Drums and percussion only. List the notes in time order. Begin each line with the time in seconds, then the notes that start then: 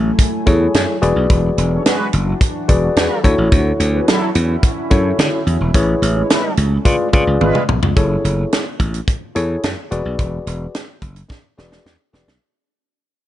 0.19 kick, closed hi-hat
0.46 kick, closed hi-hat
0.74 snare, closed hi-hat
1.03 closed hi-hat
1.30 kick, closed hi-hat
1.58 closed hi-hat
1.86 snare, closed hi-hat
2.13 closed hi-hat
2.41 kick, closed hi-hat
2.69 kick, closed hi-hat
2.97 snare, closed hi-hat
3.24 kick, closed hi-hat
3.52 kick, closed hi-hat
3.80 closed hi-hat
4.08 snare, closed hi-hat
4.35 closed hi-hat
4.63 kick, closed hi-hat
4.91 kick, closed hi-hat
5.19 snare, closed hi-hat
5.47 closed hi-hat
5.74 kick, closed hi-hat
6.03 closed hi-hat
6.30 snare, closed hi-hat
6.57 closed hi-hat
6.85 kick, closed hi-hat
7.13 kick, closed hi-hat
7.41 high tom
7.55 mid tom
7.69 mid tom
7.83 floor tom
7.97 kick, closed hi-hat
8.25 closed hi-hat
8.53 snare, closed hi-hat
8.80 kick, closed hi-hat
8.94 closed hi-hat
9.08 kick, closed hi-hat
9.36 closed hi-hat
9.63 snare, closed hi-hat
9.92 closed hi-hat
10.19 kick, closed hi-hat
10.47 closed hi-hat
10.75 snare, closed hi-hat
11.02 kick, closed hi-hat
11.16 closed hi-hat
11.30 kick, snare
11.59 snare
11.72 snare
11.86 snare
12.14 snare
12.28 snare